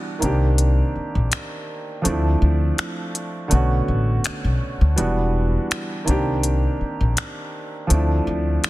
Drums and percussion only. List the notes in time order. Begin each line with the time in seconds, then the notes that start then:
0.22 closed hi-hat
0.58 closed hi-hat
1.32 finger snap, closed hi-hat
2.05 closed hi-hat
2.78 finger snap, closed hi-hat
3.15 closed hi-hat
3.51 closed hi-hat
4.24 finger snap, closed hi-hat
4.98 closed hi-hat
5.71 finger snap, closed hi-hat
6.08 closed hi-hat
6.43 closed hi-hat
7.17 finger snap, closed hi-hat
7.90 closed hi-hat
8.64 finger snap, closed hi-hat